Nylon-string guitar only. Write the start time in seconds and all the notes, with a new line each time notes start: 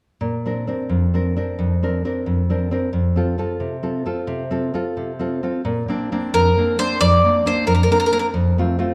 0.21 A#2
0.46 C4 D4 A#4
0.67 C4 D4 A#4
0.89 F2
1.14 C4 D4 A#4
1.36 C4 D4 A#4
1.59 F2
1.83 C4 D4 A#4
2.05 C4 D4 A#4
2.26 F2
2.50 C4 D4 A#4
2.71 C4 D4 A#4
2.93 F2
3.16 C4 F4 A4
3.38 C4 F4 A4
3.60 C3
3.83 C4 F4 A4
4.06 C4 F4 A4
4.27 C3
4.51 C4 F4 A4
4.74 C4 F4 A4
4.97 C3
5.19 C4 F4 A4
5.43 C4 F4 A4
5.65 A#2
5.88 A#3 C4 D4
6.12 A#3 C4 D4
6.33 F2
6.57 A#3 C4 D4
6.79 A#3 C4 D4
7.01 F2
7.24 A#3 C4 D4
7.45 A#3 C4 D4
7.67 F2
7.90 A#3 C4 D4
8.12 A#3 C4 D4
8.34 F2
8.58 A3 C4 F4
8.79 A3 C4 F4